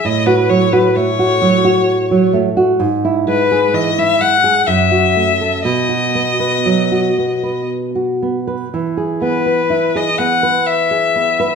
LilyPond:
<<
  \new Staff \with { instrumentName = "Violin" } { \time 3/4 \key e \major \tempo 4 = 63 dis''16 b'16 cis''16 b'16 cis''4. r8 | r8 b'8 dis''16 e''16 fis''8 e''4 | dis''2 r4 | r8 b'8. dis''16 fis''8 e''4 | }
  \new Staff \with { instrumentName = "Nylon-string guitar" } { \time 3/4 \key e \major a,16 fis'16 fis16 fis'16 a16 fis'16 fis16 fis'8 fis16 a16 fis'16 | gis,16 e'16 gis16 gis'16 e16 e'16 gis16 gis'16 fis,16 fis'16 a16 a'16 | b,16 fis'16 b16 b'16 fis16 fis'16 b16 b'8 fis'16 b16 b'16 | e16 gis'16 b16 b'16 e'16 gis'16 b16 b'8 gis'16 b16 b'16 | }
>>